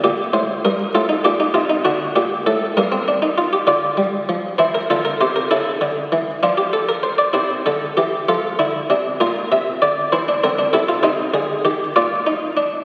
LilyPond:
<<
  \new Staff \with { instrumentName = "Harpsichord" } { \time 6/8 \key c \dorian \tempo 4. = 65 << { g'8 c''8 bes'8 a'8 g'8 f'8 | fis'8 g'8 a'8 bes'4. | d''4. c''16 bes'16 a'16 bes'16 c''16 bes'16 | a'4. f'16 g'16 a'16 bes'16 c''16 d''16 |
c''4. a'4. | bes'8 e''8 d''8 c''8 bes'8 a'8 | \key c \minor c''4. d''4. | } \\ { r4. f'16 ees'16 d'16 ees'16 r16 ees'16 | d'4. bes16 c'16 d'16 ees'16 f'16 g'16 | f'4. e'8 f'8 g'8 | e'4. d'4. |
e'8 a'8 g'8 f'8 e'8 d'8 | f'4. e'16 d'16 c'16 d'16 e'16 f'16 | ees'8 aes'8 g'8 f'8 ees'8 d'8 | } >> }
  \new Staff \with { instrumentName = "Harpsichord" } { \clef bass \time 6/8 \key c \dorian bes,8 a,8 g,8 a,8 bes,8 c8 | d8 bes,8 a,8 g,4. | d8 g8 f8 e8 d8 c8 | cis8 d8 e8 f4. |
c8 d8 e8 f8 d8 c8 | bes,8 c8 d8 e8 d8 c8 | \key c \minor c8 d8 ees8 bes,4. | }
>>